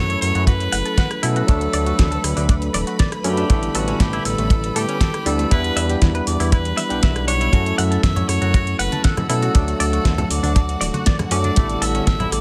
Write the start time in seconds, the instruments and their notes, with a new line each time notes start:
Already playing: analog synth bass F#2, tine electric piano F#3 A3 C#4 E4 A4, violin section B4 B5, tenor saxophone C#5
0.10 clean electric guitar C#5, closed hi-hat
0.21 analog synth bass F#2, tenor saxophone C#5, open hi-hat
0.35 analog synth bass F#2, clean electric guitar F#4, closed hi-hat
0.46 clean electric guitar F#4, tenor saxophone B4, kick, closed hi-hat
0.60 closed hi-hat
0.72 analog synth bass F#1, clean electric guitar F#5, open hi-hat
0.85 clean electric guitar A4, closed hi-hat
0.98 clean electric guitar F#5, kick, snare, closed hi-hat
1.11 cross-stick, closed hi-hat
1.22 analog synth bass B2, tine electric piano F#3 A3 C#4 E4 A4, clean electric guitar E4, tenor saxophone A4, open hi-hat
1.36 clean electric guitar F#4, closed hi-hat
1.47 analog synth bass D2, tine electric piano F#3 A3 D4 F#4 A4, clean electric guitar D4, kick, closed hi-hat
1.61 closed hi-hat
1.73 analog synth bass D2, clean electric guitar D5, open hi-hat
1.86 clean electric guitar F#4, closed hi-hat
1.99 analog synth bass D2, clean electric guitar D3, kick, snare, closed hi-hat
2.11 clean electric guitar A4, closed hi-hat
2.24 analog synth bass D2, cross-stick, open hi-hat
2.37 analog synth bass D2, clean electric guitar D4, open hi-hat
2.49 clean electric guitar D4, kick, closed hi-hat
2.62 closed hi-hat
2.74 analog synth bass D1, clean electric guitar D5, snare, open hi-hat
2.87 clean electric guitar F#4, closed hi-hat
2.99 clean electric guitar D5, kick, snare, closed hi-hat
3.12 cross-stick, closed hi-hat
3.24 analog synth bass F#2, tine electric piano F#3 A3 D4 F#4 A4, clean electric guitar C#4, tenor saxophone G4, open hi-hat
3.37 clean electric guitar D4, closed hi-hat
3.48 analog synth bass A1, tine electric piano D3 G3 B3 E4 A4, clean electric guitar A3, kick, closed hi-hat
3.63 closed hi-hat
3.75 analog synth bass A1, tenor saxophone F#4, clean electric guitar A4, open hi-hat
3.88 clean electric guitar C#4, closed hi-hat
4.00 analog synth bass A1, clean electric guitar A2, tenor saxophone G4, kick, snare, closed hi-hat
4.13 clean electric guitar E4, closed hi-hat
4.25 analog synth bass A1, tenor saxophone A4, cross-stick, open hi-hat
4.38 analog synth bass A1, clean electric guitar A3, closed hi-hat
4.50 clean electric guitar A3, kick, closed hi-hat
4.64 closed hi-hat
4.76 analog synth bass A2, tenor saxophone G4, clean electric guitar A4, open hi-hat
4.89 clean electric guitar C#4, closed hi-hat
5.01 clean electric guitar A4, kick, snare, closed hi-hat
5.14 cross-stick, closed hi-hat
5.25 analog synth bass D2, tine electric piano G3 B3 D4 E4 A4, clean electric guitar G3, tenor saxophone A4, open hi-hat
5.39 clean electric guitar A3, closed hi-hat
5.50 analog synth bass E2, tine electric piano G3 B3 D4 E4 F#5, clean electric guitar E4, tenor saxophone B4, kick, closed hi-hat
5.64 closed hi-hat
5.76 analog synth bass E2, clean electric guitar E5, open hi-hat
5.89 clean electric guitar G4, closed hi-hat
6.02 analog synth bass E2, clean electric guitar E3, kick, snare, closed hi-hat
6.15 clean electric guitar B4, closed hi-hat
6.27 analog synth bass E2, tenor saxophone D5, open hi-hat
6.40 analog synth bass E2, clean electric guitar E4, open hi-hat
6.52 clean electric guitar E4, tenor saxophone B4, kick, closed hi-hat
6.65 closed hi-hat
6.77 clean electric guitar E5, snare, open hi-hat
6.89 analog synth bass B1, tine electric piano G3 B3 D4 E4 F#5, clean electric guitar G4, closed hi-hat
7.03 analog synth bass B1, clean electric guitar E5, kick, snare, closed hi-hat
7.16 cross-stick, closed hi-hat
7.27 clean electric guitar D4, tenor saxophone C#5, open hi-hat
7.41 clean electric guitar E4, closed hi-hat
7.52 analog synth bass F#2, tine electric piano F#3 A3 C#4 E4 A4, clean electric guitar F#4, violin section F#4 F#5, kick, closed hi-hat
7.66 closed hi-hat
7.78 analog synth bass F#2, tenor saxophone E5, clean electric guitar F#5, open hi-hat
7.91 clean electric guitar A4, closed hi-hat
8.03 analog synth bass F#2, clean electric guitar F#3, tenor saxophone E5, kick, snare, closed hi-hat
8.16 clean electric guitar C#5, closed hi-hat, low conga
8.28 analog synth bass F#2, tenor saxophone C#5, cross-stick, open hi-hat
8.42 analog synth bass F#2, clean electric guitar F#4, closed hi-hat, high conga
8.54 clean electric guitar F#4, kick, closed hi-hat
8.67 closed hi-hat
8.79 analog synth bass F#1, tenor saxophone B4, clean electric guitar F#5, open hi-hat
8.92 clean electric guitar A4, closed hi-hat, high conga
9.04 tenor saxophone A4, clean electric guitar F#5, kick, snare, closed hi-hat
9.17 cross-stick, closed hi-hat, high conga, low conga
9.29 analog synth bass B2, tine electric piano F#3 A3 C#4 E4 A4, clean electric guitar E4, tenor saxophone A4, open hi-hat
9.43 clean electric guitar F#4, closed hi-hat
9.54 analog synth bass D2, tine electric piano F#3 A3 D4 F#4 A4, clean electric guitar D4, kick, closed hi-hat
9.68 closed hi-hat
9.80 analog synth bass D2, tenor saxophone A4, clean electric guitar D5, open hi-hat
9.93 clean electric guitar F#4, closed hi-hat
10.05 analog synth bass D2, clean electric guitar D3, kick, snare, closed hi-hat
10.18 clean electric guitar A4, closed hi-hat, low conga
10.30 analog synth bass D2, tenor saxophone D5, open hi-hat
10.43 analog synth bass D2, clean electric guitar D4, open hi-hat, high conga
10.56 clean electric guitar D4, kick, closed hi-hat
10.69 closed hi-hat
10.81 analog synth bass D1, clean electric guitar D5, snare, open hi-hat
10.94 clean electric guitar F#4, closed hi-hat, high conga
11.06 clean electric guitar D5, kick, snare, closed hi-hat
11.19 cross-stick, closed hi-hat, high conga, low conga
11.31 analog synth bass F#2, tine electric piano F#3 A3 D4 F#4 A4, clean electric guitar C#4, tenor saxophone D5, open hi-hat
11.44 clean electric guitar D4, closed hi-hat, high conga
11.56 analog synth bass A1, tine electric piano D3 G3 B3 E4 A4, clean electric guitar A3, kick, closed hi-hat
11.70 closed hi-hat
11.81 analog synth bass A1, clean electric guitar A4, tenor saxophone E5, open hi-hat
11.95 clean electric guitar C#4, closed hi-hat
12.07 analog synth bass A1, clean electric guitar A2, tenor saxophone E5, kick, snare, closed hi-hat
12.20 clean electric guitar E4, closed hi-hat, low conga
12.32 analog synth bass A1, tenor saxophone D5, cross-stick, open hi-hat